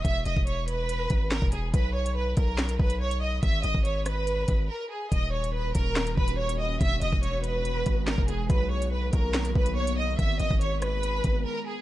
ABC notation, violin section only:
X:1
M:4/4
L:1/8
Q:1/4=142
K:Fblyd
V:1 name="Violin section"
=e _e d =B3 _B ^G | =B ^c B ^A2 B c ^d | f e d c3 B A | e d c B2 c d e |
=e _e d =B3 _B ^G | =B d B ^A2 B d ^d | f e d c3 B A |]